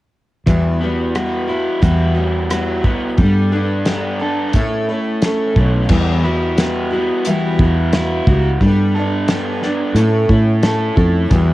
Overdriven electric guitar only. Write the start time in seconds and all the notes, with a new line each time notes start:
0.47 E2
0.81 B3
1.15 F#4
1.49 E4
1.82 F#4
2.17 G3
2.50 F#4
2.84 B3
3.18 G3
3.52 D4
3.87 B3
4.22 A4
4.55 A2
4.89 A3
5.23 E4
5.57 C#4
5.90 E2
6.24 E4
6.58 F#4
6.92 B3
7.26 E4
7.60 F#4
7.94 E4
8.28 F#4
8.60 G3
8.94 A4
9.28 B3
9.63 D4
9.96 A2
10.30 E4
10.64 A4
10.96 E4
11.30 E2